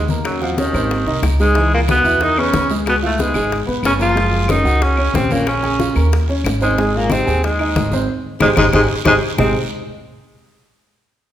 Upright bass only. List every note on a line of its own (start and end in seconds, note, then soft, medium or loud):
0.00 0.68 D#2 medium
0.73 1.04 G#1 medium
1.06 1.21 C2 medium
1.22 1.98 C#2 medium
2.04 2.49 E2 medium
2.53 3.29 C#2 medium
3.34 3.65 G#1 medium
3.67 3.82 G#1 medium
3.83 4.59 F#1 medium
4.64 5.10 C#2 medium
5.14 5.90 A#1 medium
5.96 6.41 D#2 medium
6.44 7.20 G#1 loud
7.27 7.72 D#2 medium
7.75 8.06 G#1 medium
8.41 8.53 G#1 medium
8.56 8.69 G#1 medium
8.73 8.85 G#1 medium
9.05 9.18 G#1 loud
9.38 9.53 G#1 medium